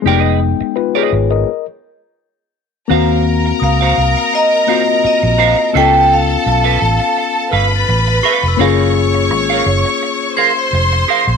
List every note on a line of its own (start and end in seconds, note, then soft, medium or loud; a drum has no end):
0.02 0.52 F1 loud
0.02 1.43 G#3 medium
0.02 1.44 B3 medium
0.02 1.45 D#4 medium
0.02 0.20 G4 medium
0.07 0.20 A#4 medium
0.07 0.20 D5 medium
0.07 0.76 G5 medium
0.20 0.39 G#4 medium
0.20 0.39 B4 medium
0.20 0.40 D#5 medium
0.61 muted clean electric guitar stroke soft
0.61 muted fingered electric bass stroke soft
0.76 0.95 F4 soft
0.76 0.95 B4 medium
0.76 muted clean electric guitar stroke soft
0.95 1.30 G#4 soft
0.95 1.11 G#4 medium
0.95 1.12 B4 medium
0.95 1.30 C#5 medium
0.95 1.13 D#5 medium
1.12 1.43 G#1 medium
1.12 muted clean electric guitar stroke soft
1.31 1.65 A#4 medium
1.31 1.65 D#5 medium
1.31 muted clean electric guitar stroke soft
2.88 3.51 D#2 loud
2.88 4.63 A#3 medium
2.88 4.64 C4 medium
2.88 3.23 F#4 medium
2.88 5.71 A#4 medium
2.88 3.23 C5 medium
2.88 4.65 F5 medium
2.88 3.24 F5 medium
2.88 5.71 A#5 medium
2.92 4.66 F#4 medium
3.46 muted clean electric guitar stroke soft
3.60 3.92 C#2 medium
3.60 4.72 D#6 medium
3.60 muted clean electric guitar stroke soft
3.64 4.30 F5 medium
3.81 3.96 F#4 medium
3.81 3.96 C5 medium
3.81 3.96 F5 medium
3.98 4.14 C2 medium
4.17 muted clean electric guitar stroke soft
4.33 5.05 D#5 medium
4.33 muted clean electric guitar stroke soft
4.67 5.74 A#3 soft
4.67 5.75 C4 soft
4.67 5.75 F4 soft
4.67 4.82 F#4 medium
4.67 5.76 F#4 soft
4.67 4.82 C5 medium
4.67 4.82 F5 medium
4.87 muted clean electric guitar stroke soft
5.04 5.78 D#5 medium
5.04 muted clean electric guitar stroke soft
5.04 muted fingered electric bass stroke soft
5.23 5.53 A#1 medium
5.23 muted clean electric guitar stroke soft
5.38 5.56 F#4 medium
5.38 5.56 C5 medium
5.38 5.57 F5 medium
5.59 muted clean electric guitar stroke soft
5.73 6.35 C#2 medium
5.73 8.55 B3 medium
5.73 8.55 C#4 medium
5.73 8.56 F4 medium
5.73 6.07 A4 medium
5.73 7.49 A4 medium
5.73 6.08 B4 medium
5.73 6.08 F5 medium
5.73 6.13 G5 loud
5.73 7.49 A5 medium
5.78 8.57 A4 medium
6.14 7.50 F5 medium
6.29 muted clean electric guitar stroke soft
6.46 6.76 B1 medium
6.46 muted clean electric guitar stroke soft
6.64 6.79 A4 medium
6.64 6.80 B4 medium
6.64 6.79 F5 medium
6.80 6.98 A1 medium
6.80 muted clean electric guitar stroke soft
7.00 muted clean electric guitar stroke soft
7.17 muted clean electric guitar stroke soft
7.51 7.83 G1 medium
7.51 7.66 A4 medium
7.51 7.66 B4 medium
7.51 8.57 B4 medium
7.51 7.66 F5 medium
7.51 8.58 B5 medium
7.51 8.64 F6 soft
7.71 muted clean electric guitar stroke soft
7.76 8.84 A6 soft
7.89 8.19 A1 medium
7.89 muted clean electric guitar stroke soft
8.08 muted clean electric guitar stroke soft
8.23 8.45 A4 medium
8.23 8.43 B4 medium
8.23 8.42 F5 medium
8.23 8.91 C#6 medium
8.43 8.57 F1 medium
8.43 muted clean electric guitar stroke soft
8.48 9.13 E6 medium
8.57 9.30 F#1 loud
8.57 11.37 A#3 medium
8.57 11.37 C#4 medium
8.57 11.37 F4 medium
8.57 8.92 G#4 medium
8.57 8.93 A#4 medium
8.57 10.34 C#5 medium
8.57 8.93 F5 medium
8.57 10.34 C#6 medium
8.62 11.37 G#4 medium
9.14 muted clean electric guitar stroke soft
9.30 9.61 G#1 medium
9.30 muted clean electric guitar stroke soft
9.50 9.65 G#4 medium
9.50 9.65 A#4 medium
9.50 9.64 F5 medium
9.66 9.82 F#1 medium
9.66 muted clean electric guitar stroke soft
9.85 muted clean electric guitar stroke soft
10.02 muted clean electric guitar stroke soft
10.37 10.51 G#4 medium
10.37 10.51 A#4 medium
10.37 11.37 C5 medium
10.37 10.51 F5 medium
10.37 11.37 C6 medium
10.37 11.37 G#6 medium
10.56 11.37 C7 soft
10.56 muted clean electric guitar stroke soft
10.73 11.03 F1 medium
10.73 muted clean electric guitar stroke soft
10.93 muted clean electric guitar stroke soft
11.08 11.25 G#4 medium
11.08 11.26 A#4 medium
11.08 11.26 F5 medium
11.27 11.37 A#1 medium
11.27 muted clean electric guitar stroke soft